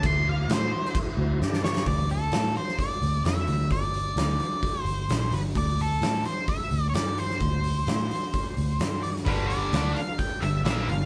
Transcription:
0.03 picked electric bass D2, tonewheel organ E4 F#4 C5, lead electric guitar C6, kick, crash
0.29 lead electric guitar F5
0.48 picked electric bass A2, lead electric guitar C5, snare, crash
0.85 snare
0.95 kick, crash
1.17 picked electric bass D2
1.41 picked electric bass G2, tonewheel organ D4 G4 D5, snare
1.54 snare
1.64 lead electric guitar C#5, snare
1.76 snare
1.86 picked electric bass D2, lead electric guitar D5, kick, open hi-hat
2.09 lead electric guitar A4, open hi-hat
2.32 picked electric bass A2, snare, open hi-hat
2.56 lead electric guitar C5, open hi-hat
2.69 snare
2.79 lead electric guitar D5, kick, open hi-hat
3.02 picked electric bass D2, open hi-hat
3.25 picked electric bass F2, lead electric guitar E5, snare, open hi-hat
3.47 picked electric bass D2, open hi-hat
3.71 picked electric bass G1, lead electric guitar D5, kick, open hi-hat
3.94 open hi-hat
4.16 picked electric bass D2, snare, open hi-hat
4.40 open hi-hat
4.63 kick, open hi-hat
4.82 picked electric bass G1, lead electric guitar C5, open hi-hat
5.09 picked electric bass A#1, snare, open hi-hat
5.32 picked electric bass G1, lead electric guitar B4, open hi-hat
5.55 picked electric bass D2, lead electric guitar D5, kick, open hi-hat
5.79 lead electric guitar A4, open hi-hat
6.01 picked electric bass A2, snare, open hi-hat
6.25 lead electric guitar C5, open hi-hat
6.48 lead electric guitar E5, kick, open hi-hat
6.71 picked electric bass D2, open hi-hat
6.89 lead electric guitar C#5
6.94 picked electric bass G2, lead electric guitar D5, snare, open hi-hat
7.18 lead electric guitar C5, open hi-hat
7.31 snare
7.40 picked electric bass D2, kick, open hi-hat
7.64 open hi-hat
7.87 picked electric bass A2, snare, open hi-hat
8.11 open hi-hat
8.34 kick, open hi-hat
8.57 picked electric bass D2, open hi-hat
8.79 picked electric bass G2, snare, open hi-hat
9.03 lead electric guitar D5, open hi-hat
9.16 snare
9.25 picked electric bass G1, distorted electric guitar G2 D3 G3, tonewheel organ F#4 A#4 C5, lead electric guitar B4, kick, open hi-hat
9.42 tonewheel organ F4 A4 B4
9.47 lead electric guitar D5, open hi-hat
9.72 picked electric bass D2, distorted electric guitar D3 A3 D4, snare, open hi-hat
9.95 lead electric guitar F5, open hi-hat
10.19 lead electric guitar G5, kick, open hi-hat
10.41 picked electric bass G1, distorted electric guitar G2 D3, lead electric guitar E5, open hi-hat
10.64 picked electric bass A#1, distorted electric guitar A#2 F3 A#3, lead electric guitar E5, snare, open hi-hat
10.88 picked electric bass G1, distorted electric guitar G2 D3, lead electric guitar F5, open hi-hat

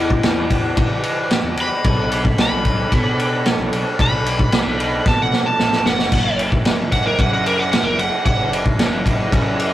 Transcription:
Already playing: picked electric bass E2, electric slide guitar E4, tonewheel organ F#4 G4 D5
0.10 kick
0.23 picked electric bass E2, snare, ride
0.37 picked electric bass E2
0.50 kick, ride
0.77 picked electric bass E3, kick, ride
1.03 ride
1.30 snare, ride
1.44 picked electric bass E2
1.57 picked electric bass E2, electric slide guitar B5, ride
1.84 picked electric bass B1, tonewheel organ D4 A4 C#5, kick, ride
2.12 ride
2.25 kick
2.37 picked electric bass B1, snare, ride
2.41 electric slide guitar B5
2.51 picked electric bass B1
2.65 kick, ride
2.92 picked electric bass B2, kick, ride
3.19 ride
3.46 snare, ride
3.59 picked electric bass B1
3.72 picked electric bass B1, ride
3.99 picked electric bass B1, electric slide guitar B5, kick, ride
4.26 ride
4.39 kick
4.52 picked electric bass B1, snare, ride
4.66 picked electric bass B1
4.80 ride
5.06 picked electric bass B2, electric slide guitar A5, kick, snare
5.22 electric slide guitar F#5
5.33 snare
5.46 electric slide guitar A5
5.59 picked electric bass A1, snare
5.73 snare
5.86 picked electric bass F#1, electric slide guitar F#5, snare
5.99 snare
6.12 picked electric bass F#1, tonewheel organ E4 A#4 C#5, kick, splash, crash
6.39 ride
6.52 kick
6.64 picked electric bass F#1, snare, ride
6.78 picked electric bass F#1
6.92 electric slide guitar F#5, kick, ride
7.06 electric slide guitar A#4
7.19 picked electric bass F#2, electric slide guitar F#5, kick, ride
7.33 electric slide guitar F#5
7.46 electric slide guitar A#4, ride
7.59 electric slide guitar F#5
7.72 electric slide guitar F#5, snare, ride
7.83 picked electric bass F#1, electric slide guitar A#4
7.97 picked electric bass F#1, electric slide guitar F#5, ride
8.26 picked electric bass F#1, electric slide guitar F#5, kick, ride
8.53 ride
8.66 kick
8.77 picked electric bass F#1, snare, ride
8.91 picked electric bass F#1
9.06 kick, ride
9.32 picked electric bass F#2, kick, ride
9.59 ride

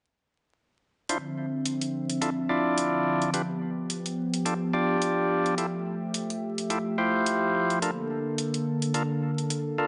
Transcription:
1.09 analog synth pad D3 F3 C4 E5, tonewheel organ D4 E4 F4 C5, closed hi-hat
1.66 closed hi-hat
1.81 closed hi-hat
2.10 closed hi-hat
2.21 tonewheel organ D4 E4 F4 A4, closed hi-hat
2.49 tonewheel organ D4 E4 F4 D5
2.78 closed hi-hat
3.22 closed hi-hat
3.34 analog synth pad B3 G4, tonewheel organ D4 F4 G4 B4, closed hi-hat
3.90 closed hi-hat
4.06 closed hi-hat
4.34 closed hi-hat
4.45 tonewheel organ D4 F4 G4 A4, closed hi-hat
4.73 tonewheel organ D4 F4 G4 D5
5.02 closed hi-hat
5.46 closed hi-hat
5.58 analog synth pad A3 E5, tonewheel organ E4 F4 G4 A4, closed hi-hat
6.14 closed hi-hat
6.30 closed hi-hat
6.58 closed hi-hat
6.70 tonewheel organ E4 F4 G4 A4, closed hi-hat
6.98 tonewheel organ E4 F4 G4 C5
7.26 closed hi-hat
7.70 closed hi-hat
7.82 analog synth pad D3 A#3 A4, tonewheel organ D4 F4 A4 A#4, closed hi-hat
8.38 closed hi-hat
8.54 closed hi-hat
8.82 closed hi-hat
8.94 tonewheel organ D4 F4 A4 A#4, closed hi-hat
9.38 closed hi-hat
9.50 closed hi-hat
9.78 tonewheel organ D4 F4 A4 A#4

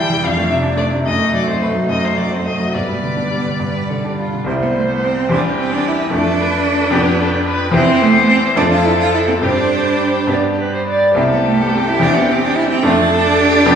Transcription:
Already playing: grand piano E2 E3 G3 E4, cello E4, viola G4, violin G5
0.09 grand piano E3
0.23 grand piano F2, cello D4, viola D4, violin F5
0.37 grand piano A3
0.50 grand piano C3, violin E5
0.63 grand piano D4
0.77 grand piano A3, violin D5
0.91 grand piano C3
1.05 grand piano F#2, viola A3, cello D#4, violin D#5
1.19 grand piano A3
1.33 grand piano F#3, violin D5
1.47 grand piano C4, violin C5
1.62 grand piano A3, violin B4
1.75 grand piano F#3
1.88 grand piano F#2, viola A3, violin D#5
2.04 grand piano A3, violin C5
2.17 grand piano F#3, violin D5
2.31 grand piano C4, violin C5
2.46 grand piano A3, violin D#5
2.60 grand piano F#3
2.74 grand piano G2, viola B3, cello B4, violin D5
2.89 grand piano G3
3.03 grand piano D3
3.17 grand piano D4
3.31 grand piano G3
3.46 grand piano D3
3.60 grand piano G2, cello B4
3.75 grand piano G3
3.89 grand piano D3, cello A4
4.05 grand piano D4, cello G4
4.19 grand piano G3, cello F4
4.34 grand piano D3
4.44 grand piano C2 G3 E4 C5, cello C4, viola C5
4.62 cello B3
4.76 cello A3
4.90 cello B3
5.04 cello C4
5.29 grand piano E2 G3 G4 C5, cello D4, violin G4, viola B4
5.59 cello C4
5.73 cello D4
5.88 cello E4
6.10 grand piano F2 A3 D4 A4, cello D4, violin A4
6.41 violin B4
6.66 violin A4
6.90 grand piano F2 B3 D4 G4
6.95 violin G4
7.20 violin A4
7.47 violin B4
7.71 grand piano E2 C4 E4 G4, cello C4, violin C5
8.02 cello A3
8.17 cello B3
8.28 cello C4
8.56 grand piano F2 C4 D4 A4, cello D4, viola A4, violin A4
8.72 cello F4
8.85 cello E4
9.00 cello F4
9.14 cello E4
9.28 cello C4
9.42 grand piano G2 C4 D4 G4, cello D4, violin G4, viola C5
10.27 grand piano G2 B3 D4 G4, viola D5
10.60 viola B4
10.74 viola C5
10.88 viola D5
11.14 grand piano C2 C4 E4 G4, cello C4, viola G4, violin A4
11.33 cello B3
11.46 cello A3
11.61 cello B3
11.74 cello C4
11.88 cello E4
12.00 grand piano E2 C4 E4 G4, cello D4, violin G4
12.16 cello B3
12.30 cello C4
12.45 cello D4
12.56 cello E4
12.70 cello C4
12.83 grand piano F2 A3 D4 A4, cello D4, violin F4, viola A4
13.13 violin A4
13.41 violin G4
13.66 grand piano F2 B3 D4 G4, viola B4

